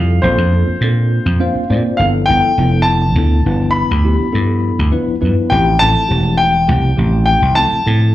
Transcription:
0.00 0.19 F2 medium
0.00 0.23 G3 medium
0.00 0.23 C4 soft
0.00 0.24 E4 medium
0.00 0.23 F4 medium
0.00 0.23 A4 medium
0.00 0.26 F5 medium
0.22 0.36 A#1 medium
0.22 0.47 A#3 medium
0.22 0.47 C4 medium
0.22 0.47 D4 medium
0.22 0.47 F4 medium
0.22 0.48 A4 medium
0.22 1.36 C5 medium
0.38 0.63 F2 medium
0.52 0.75 A#3 medium
0.52 0.75 C4 medium
0.52 0.75 D4 medium
0.52 0.75 F4 medium
0.52 0.75 A4 medium
0.68 muted slap bass stroke soft
0.81 1.18 A#2 medium
0.81 1.26 A#3 medium
0.81 1.26 C4 medium
0.81 1.26 D4 medium
0.81 1.27 F4 medium
0.81 1.27 A4 medium
1.26 1.38 F2 medium
1.39 1.62 A#3 medium
1.39 1.62 C4 medium
1.39 1.62 D4 medium
1.39 1.63 F4 medium
1.39 1.63 C5 medium
1.39 1.68 F5 medium
1.55 muted slap bass stroke soft
1.70 1.82 A#2 medium
1.70 1.99 A#3 medium
1.70 1.99 C4 medium
1.70 1.98 D4 medium
1.70 2.00 F4 medium
1.70 2.00 C5 medium
1.70 1.97 D5 medium
1.97 2.24 G1 medium
1.97 2.23 F3 medium
1.97 2.23 B3 medium
1.97 2.23 D4 medium
1.97 2.23 E4 medium
1.97 2.23 A4 medium
1.97 2.04 F5 medium
2.26 2.41 G1 medium
2.26 2.51 F3 medium
2.26 2.50 B3 medium
2.26 2.51 D4 medium
2.26 2.51 E4 medium
2.26 2.51 A4 medium
2.26 2.82 G5 medium
2.58 3.16 F1 medium
2.58 3.02 F3 medium
2.58 3.02 B3 medium
2.58 3.02 D4 medium
2.58 3.03 E4 medium
2.58 3.03 A4 medium
2.82 3.69 A5 medium
3.16 3.41 D2 medium
3.16 3.38 F3 medium
3.16 3.39 B3 medium
3.16 3.39 D4 medium
3.16 3.39 E4 medium
3.16 3.39 A4 medium
3.45 3.83 G1 medium
3.45 3.90 F3 medium
3.45 3.90 B3 medium
3.45 3.90 D4 medium
3.45 3.90 E4 medium
3.45 3.90 B4 medium
3.71 4.86 B5 medium
3.91 4.15 D2 medium
4.04 4.27 F3 medium
4.04 4.27 B3 medium
4.04 4.27 D4 medium
4.04 4.27 E4 medium
4.04 4.27 G4 medium
4.20 muted slap bass stroke soft
4.32 4.71 G2 medium
4.32 4.77 F3 medium
4.32 4.77 B3 soft
4.32 4.78 D4 medium
4.32 4.78 E4 medium
4.32 4.78 A4 medium
4.79 4.91 D2 medium
4.92 5.14 F3 medium
4.92 5.15 B3 medium
4.92 5.15 D4 medium
4.92 5.14 E4 medium
4.92 5.15 B4 medium
5.08 muted slap bass stroke soft
5.21 5.34 G2 medium
5.21 5.50 F3 medium
5.21 5.51 B3 medium
5.21 5.51 D4 medium
5.21 5.51 E4 medium
5.21 5.51 B4 medium
5.50 5.76 A1 medium
5.50 5.75 F3 medium
5.50 5.75 A3 medium
5.50 5.75 C4 medium
5.50 5.75 E4 medium
5.50 5.75 G4 medium
5.50 5.78 G5 medium
5.79 5.94 A1 medium
5.79 6.02 F3 medium
5.79 6.02 A3 medium
5.79 6.02 C4 medium
5.79 6.02 E4 medium
5.79 6.02 A4 medium
5.79 6.35 A5 loud
6.08 6.69 E1 medium
6.08 6.53 F3 medium
6.08 6.53 A3 medium
6.08 6.54 C4 soft
6.08 6.54 E4 medium
6.08 6.54 G4 medium
6.37 7.22 G5 medium
6.68 6.93 C2 medium
6.68 6.90 F3 medium
6.68 6.90 A3 medium
6.68 6.90 C4 medium
6.68 6.91 E4 medium
6.68 6.91 G4 medium
6.97 7.35 A1 medium
6.97 7.42 F3 medium
6.97 7.42 A3 medium
6.97 7.42 C4 medium
6.97 7.42 E4 medium
6.97 7.42 G4 medium
7.26 7.54 G5 medium
7.42 7.67 C2 medium
7.55 7.79 F3 medium
7.55 7.78 A3 medium
7.55 7.79 C4 medium
7.55 7.79 E4 medium
7.55 7.79 A4 medium
7.55 8.15 A5 loud
7.72 muted slap bass stroke soft
7.86 8.15 A2 medium
7.86 8.15 F3 medium
7.86 8.15 A3 medium
7.86 8.15 C4 medium
7.86 8.15 E4 medium
7.86 8.15 A4 medium

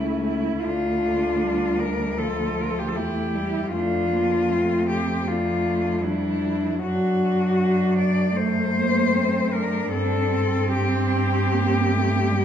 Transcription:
0.00 0.60 C#2 soft
0.00 0.64 A3 soft
0.00 0.63 C#4 soft
0.00 0.24 E4 soft
0.24 0.65 E4 soft
0.63 2.96 D2 soft
0.63 1.44 A3 soft
0.63 2.19 D4 soft
0.63 1.81 F4 soft
1.42 2.21 G3 soft
1.79 2.19 A#4 soft
2.17 2.98 F3 soft
2.17 2.98 F4 soft
2.17 2.62 A4 soft
2.60 2.72 A#4 soft
2.70 2.80 A4 soft
2.79 2.90 G4 soft
2.88 2.98 A4 soft
2.95 3.71 E2 soft
2.95 3.37 A3 soft
2.95 3.72 E4 soft
2.95 3.72 G4 soft
3.35 3.73 G3 soft
3.72 6.84 F2 soft
3.72 4.11 A3 soft
3.72 4.53 D4 soft
3.72 4.87 F4 medium
4.11 4.51 A#3 soft
4.50 5.27 A3 soft
4.50 5.28 C4 soft
4.89 5.29 G4 soft
5.27 6.03 A3 soft
5.27 6.05 D4 soft
5.27 6.06 F4 soft
6.04 6.81 G3 soft
6.04 6.83 D4 soft
6.04 6.83 E4 soft
6.81 9.92 F#2 soft
6.81 8.33 F#3 soft
6.81 7.59 D4 soft
6.81 7.97 F#4 medium
7.61 8.36 D4 soft
7.98 8.38 D5 soft
8.36 8.74 A3 soft
8.36 9.90 A3 soft
8.36 9.55 C5 medium
8.76 9.17 A#3 soft
9.15 9.56 C4 soft
9.53 9.93 D4 soft
9.53 9.91 A#4 medium
9.92 12.45 G2 soft
9.92 11.55 C4 soft
9.92 10.34 D4 soft
9.92 10.71 A4 medium
10.33 12.34 C4 soft
10.73 12.45 G4 medium
11.53 11.94 A#3 soft
11.92 12.33 A3 soft
12.31 12.45 G3 soft
12.31 12.45 A#3 soft

